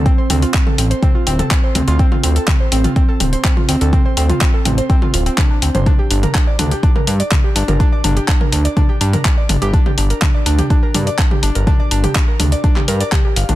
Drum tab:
HH |x-oxx-oxx-oxx-ox|x-oxx-oxx-oxx-ox|x-oxx-oxx-ox--ox|x-oxx-oxx-oxx-ox|
CP |----x-------x---|----x-------x---|----x-------x---|----x-------x---|
T2 |--o--o--o--o--o-|-o--o--o--o--o--|o--o--o--o--o--o|o--o--o--o--o--o|
BD |o---o---o---o---|o---o---o---o---|o---o---o---o---|o---o---o---o---|

HH |x-oxx-oxx-oxx-ox|x-oxx-oxx-oxx-ox|x-oxx-oxx-oxx-ox|
CP |----x-------x---|----x-------x---|----x----x--x---|
T2 |--o--o--o--o--o-|-o--o--o--o--o--|o--o--o--o--o--o|
BD |o---o---o---o---|o---o---o---o---|o---o---o---o---|